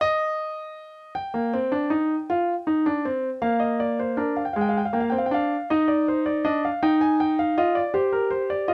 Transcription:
0.01 D#5
1.15 G5
1.34 A#3
1.54 C4
1.72 D4
1.90 D#4
2.30 F4
2.67 D#4
2.86 D4
3.05 C4
3.42 A#3 F5
3.60 D#5
3.80 D5
3.99 C5
4.17 D4 A#4
4.36 F5
4.45 G5
4.53 G#3 F5
4.61 G5
4.69 F5
4.77 G5
4.85 F5
4.93 A#3 G5
5.00 F5
5.10 C4 G5
5.18 F5
5.26 G5
5.31 D4 F5
5.70 D#4 D#5
5.88 D5
6.08 C5
6.26 D5
6.45 D4 D#5
6.65 F5
6.83 D#4 G5
7.01 G#5
7.20 G5
7.39 F5
7.58 F4 D#5
7.75 D5
7.94 G4 C5
8.13 A#4
8.31 C5
8.50 D5
8.68 F4 D#5

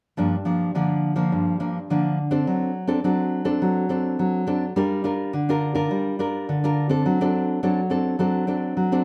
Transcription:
0.17 G2 F3 A#3 D4
0.45 F3 A#3 D4
0.75 D3 F3 A#3 D4
1.16 F3 A#3 D4
1.32 G2
1.60 F3 A#3 D4
1.90 D3 F3 A#3 D4
2.31 C4 D4 A4
2.47 F#3
2.87 C4 D4 A4
3.04 F#3 C4 D4 A4
3.45 C4 D4 A4
3.62 F#3
3.89 C4 D4 A4
4.19 F#3
4.47 C4 D4 A4
4.76 G3 D4 F4 A#4
5.04 D4 F4 A#4
5.33 D3
5.49 D4 F4 A#4
5.75 D4 F4 A#4
5.91 G3
6.19 D4 F4 A#4
6.49 D3
6.64 D4 F4 A#4
6.89 C4 D4 A4
7.06 F#3
7.21 C4 D4 A4
7.63 F#3 C4 D4 A4
7.90 C4 D4 A4
8.19 F#3 C4 D4 A4
8.47 C4 D4 A4
8.77 F#3
8.92 C4 D4 A4

